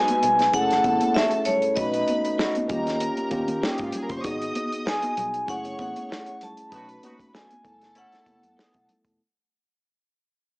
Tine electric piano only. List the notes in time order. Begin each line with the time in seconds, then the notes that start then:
Already playing: G#3 B3 D#4 F#4
0.52 A3 C#4 E4 G#4
0.83 A3 C#4 E4 A4
1.76 A3 C#4 D#4 F#4
2.68 A#3 C#4 F4 G4
3.30 A#3 C#4 F4 G4
4.23 B3 D#4 F#4 G#4
5.47 A3 C#4 E4 G#4
5.77 A3 C#4 E4 G#4
6.71 A3 C#4 D#4 F#4
7.63 A3 B3 E4 A4
8.26 A3 B3 E4 A4